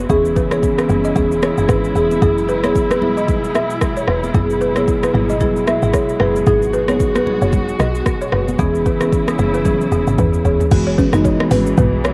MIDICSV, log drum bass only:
0, 0, Header, 1, 2, 480
1, 0, Start_track
1, 0, Tempo, 530973
1, 87, Time_signature, 4, 2, 24, 8
1, 10970, End_track
2, 0, Start_track
2, 0, Title_t, "Log drum bass"
2, 0, Program_c, 0, 39
2, 88, Note_on_c, 0, 28, 113
2, 771, Note_off_c, 0, 28, 0
2, 808, Note_on_c, 0, 30, 93
2, 1013, Note_off_c, 0, 30, 0
2, 1047, Note_on_c, 0, 28, 98
2, 1372, Note_off_c, 0, 28, 0
2, 1427, Note_on_c, 0, 30, 84
2, 1513, Note_off_c, 0, 30, 0
2, 1527, Note_on_c, 0, 32, 94
2, 1733, Note_off_c, 0, 32, 0
2, 1767, Note_on_c, 0, 28, 83
2, 1972, Note_off_c, 0, 28, 0
2, 2008, Note_on_c, 0, 30, 113
2, 2867, Note_on_c, 0, 28, 93
2, 2881, Note_off_c, 0, 30, 0
2, 3208, Note_on_c, 0, 32, 95
2, 3222, Note_off_c, 0, 28, 0
2, 3413, Note_off_c, 0, 32, 0
2, 3688, Note_on_c, 0, 28, 81
2, 3893, Note_off_c, 0, 28, 0
2, 3928, Note_on_c, 0, 30, 114
2, 4611, Note_off_c, 0, 30, 0
2, 4648, Note_on_c, 0, 32, 92
2, 4888, Note_on_c, 0, 30, 92
2, 4901, Note_off_c, 0, 32, 0
2, 5212, Note_off_c, 0, 30, 0
2, 5267, Note_on_c, 0, 32, 88
2, 5353, Note_off_c, 0, 32, 0
2, 5608, Note_on_c, 0, 30, 91
2, 5813, Note_off_c, 0, 30, 0
2, 5847, Note_on_c, 0, 32, 102
2, 6670, Note_off_c, 0, 32, 0
2, 6706, Note_on_c, 0, 30, 97
2, 6998, Note_off_c, 0, 30, 0
2, 7046, Note_on_c, 0, 35, 93
2, 7252, Note_off_c, 0, 35, 0
2, 7527, Note_on_c, 0, 30, 85
2, 7733, Note_off_c, 0, 30, 0
2, 7766, Note_on_c, 0, 28, 111
2, 8450, Note_off_c, 0, 28, 0
2, 8487, Note_on_c, 0, 30, 90
2, 8898, Note_off_c, 0, 30, 0
2, 8966, Note_on_c, 0, 28, 89
2, 9085, Note_off_c, 0, 28, 0
2, 9106, Note_on_c, 0, 32, 94
2, 9193, Note_off_c, 0, 32, 0
2, 9206, Note_on_c, 0, 40, 102
2, 9412, Note_off_c, 0, 40, 0
2, 9446, Note_on_c, 0, 28, 81
2, 9566, Note_off_c, 0, 28, 0
2, 9685, Note_on_c, 0, 30, 105
2, 10011, Note_off_c, 0, 30, 0
2, 10064, Note_on_c, 0, 30, 96
2, 10270, Note_off_c, 0, 30, 0
2, 10405, Note_on_c, 0, 32, 93
2, 10611, Note_off_c, 0, 32, 0
2, 10646, Note_on_c, 0, 35, 109
2, 10970, Note_off_c, 0, 35, 0
2, 10970, End_track
0, 0, End_of_file